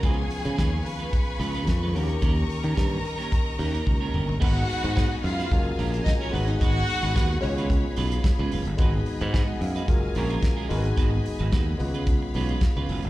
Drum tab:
CC |----------------|----------------|x---------------|----------------|
HH |x-oxx-oxx-oxx-ox|x-oxx-oxx-ox----|--oxx-oxx-oxx-ox|x-oxx-oxx-oxx-ox|
SD |----o-------o---|----o--o--------|----o--o----o---|----o-------o---|
T1 |----------------|------------o---|----------------|----------------|
T2 |----------------|--------------o-|----------------|----------------|
FT |----------------|---------------o|----------------|----------------|
BD |o---o---o---o---|o---o---o---o---|o---o---o---o---|o---o---o---o---|

CC |----------------|----------------|
HH |x-oxx-oxx-oxx-ox|x-oxx-oxx-oxx-ox|
SD |----o-------o---|----o-------o---|
T1 |----------------|----------------|
T2 |----------------|----------------|
FT |----------------|----------------|
BD |o---o---o---o---|o---o---o---o---|